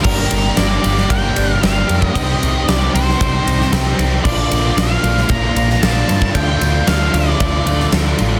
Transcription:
0.02 picked electric bass G1, overdriven electric guitar G2 D3 G3 A#3 D4 G4, lead electric guitar A#4, kick, crash
0.29 picked electric bass G1, overdriven electric guitar G3 A#3 D4 G4, ride
0.55 picked electric bass G1, overdriven electric guitar G3 A#3 D4 G4, lead electric guitar D5, snare, ride
0.82 picked electric bass G1, overdriven electric guitar G3 A#3 D4 G4, ride
0.97 snare
1.08 picked electric bass G1, overdriven electric guitar G2 D3 G3 A#3 D4 G4, lead electric guitar G5, kick, ride
1.34 picked electric bass G1, overdriven electric guitar G3 A#3 D4 G4, ride
1.60 picked electric bass G1, overdriven electric guitar G3 A#3 D4 G4, lead electric guitar F5, snare, ride
1.87 picked electric bass F2, overdriven electric guitar G3 A#3 D4 G4, ride
2.02 lead electric guitar D#5, kick
2.13 picked electric bass C2, overdriven electric guitar C3 D#3 G3 C4 G4, lead electric guitar D#5, kick, ride
2.40 picked electric bass C2, overdriven electric guitar G3 C4 G4, ride
2.66 picked electric bass C2, overdriven electric guitar D#3 G3 C4 G4, lead electric guitar D5, snare, ride
2.92 picked electric bass C2, overdriven electric guitar G3 C4 G4, lead electric guitar C5, ride
3.09 snare
3.19 picked electric bass C2, overdriven electric guitar C3 D#3 G3 C4 G4, kick, ride
3.44 picked electric bass C2, overdriven electric guitar C4 G4, clean electric guitar D#4, ride
3.48 overdriven electric guitar G3
3.61 snare
3.71 picked electric bass C2, overdriven electric guitar D#3 G3 C4 G4, snare, ride
3.97 picked electric bass C2, overdriven electric guitar G3 C4 G4, ride
4.23 picked electric bass A#1, overdriven electric guitar A#2 D3 A#3 D4 F4, clean electric guitar F3, lead electric guitar D5, kick, crash
4.50 picked electric bass A#1, overdriven electric guitar A#3 D4 F4, ride
4.77 picked electric bass A#1, overdriven electric guitar D3 A#3 D4 F4, clean electric guitar F3, lead electric guitar F5, snare, ride
5.03 picked electric bass A#1, clean electric guitar F3, overdriven electric guitar D4 F4, ride
5.07 overdriven electric guitar A#3
5.18 snare
5.29 picked electric bass A#1, overdriven electric guitar A#2 D3 A#3 D4, clean electric guitar F3, lead electric guitar A#5, kick, ride
5.33 overdriven electric guitar F4
5.55 picked electric bass A#1, overdriven electric guitar D4 F4, ride
5.59 overdriven electric guitar A#3
5.70 snare
5.81 picked electric bass A#1, overdriven electric guitar D3 A#3 D4 F4, clean electric guitar F3, lead electric guitar A5, snare, ride
6.07 picked electric bass G2, clean electric guitar F3, overdriven electric guitar A#3 D4 F4, ride
6.22 kick
6.35 picked electric bass D2, overdriven electric guitar D3 A3 D4 F4, clean electric guitar F3, lead electric guitar G5, kick, ride
6.60 picked electric bass D2, overdriven electric guitar A3 D4 F4, ride
6.86 picked electric bass D2, overdriven electric guitar D3 A3 D4 F4, clean electric guitar F3, lead electric guitar F5, snare, ride
7.13 picked electric bass D2, clean electric guitar F3, overdriven electric guitar A3 D4 F4, lead electric guitar D5, ride
7.40 picked electric bass D2, overdriven electric guitar D3 A3 D4 F4, clean electric guitar F3, kick, ride
7.65 picked electric bass D2, clean electric guitar A3, overdriven electric guitar D4 F4, ride
7.70 overdriven electric guitar A3
7.80 snare
7.92 picked electric bass D2, overdriven electric guitar D3 A3 D4 F4, clean electric guitar F3, snare, ride
8.19 picked electric bass A1, clean electric guitar F3, overdriven electric guitar D4 F4, ride
8.23 overdriven electric guitar A3

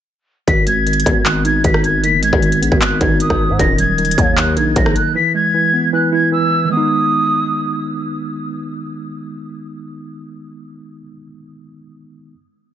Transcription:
0.48 808-style bass G#1, tine electric piano D#3, flute B6, kick, closed hi-hat
0.67 tine electric piano G#3, flute G#6, closed hi-hat
0.87 tine electric piano D#3, closed hi-hat
0.93 closed hi-hat
1.00 closed hi-hat
1.06 808-style bass G#1, tine electric piano B3, kick, closed hi-hat
1.25 tine electric piano D#3, flute F#6, clap, closed hi-hat
1.45 tine electric piano D#4, flute G#6, closed hi-hat
1.64 808-style bass G#1, tine electric piano D#3, flute B6, kick, closed hi-hat
1.74 cross-stick
1.84 flute G#6, closed hi-hat
2.03 808-style bass F#1, tine electric piano D#3, flute B6, closed hi-hat
2.18 808-style bass G#1
2.23 tine electric piano G#3, flute G#6, closed hi-hat
2.33 808-style bass G#1, kick
2.42 tine electric piano D#3, closed hi-hat
2.52 closed hi-hat
2.62 808-style bass A#1, tine electric piano B3, closed hi-hat
2.72 808-style bass G#1, kick
2.81 tine electric piano D#3, flute F#6, clap, closed hi-hat
3.01 808-style bass G#1, tine electric piano D#4, flute G#6, kick, closed hi-hat
3.20 tine electric piano D#3, flute D#6, closed hi-hat
3.30 808-style bass G#1, kick, cross-stick
3.50 808-style bass G#2
3.59 808-style bass D#1, tine electric piano D#3, flute A#6, kick, closed hi-hat
3.78 tine electric piano F#3, flute G#6, closed hi-hat
3.98 tine electric piano D#3, closed hi-hat
4.05 closed hi-hat
4.11 closed hi-hat
4.18 808-style bass D#2, tine electric piano A#3, kick, closed hi-hat
4.37 tine electric piano D#3, flute F#6, clap, closed hi-hat
4.57 808-style bass A#1, tine electric piano D#4, flute G#6, closed hi-hat
4.76 808-style bass A#1, tine electric piano D#3, flute A#6, kick, closed hi-hat
4.86 cross-stick
4.96 flute F#6, closed hi-hat
5.15 tine electric piano E3, flute B6
5.35 tine electric piano G#3, flute G#6
5.54 tine electric piano E3
5.73 tine electric piano B3
5.93 tine electric piano E3, flute F#6
6.12 tine electric piano E4, flute G#6
6.32 tine electric piano E3, flute E6
6.65 tine electric piano D#3
6.69 tine electric piano G#3, flute D#6
6.73 tine electric piano B3 D#4

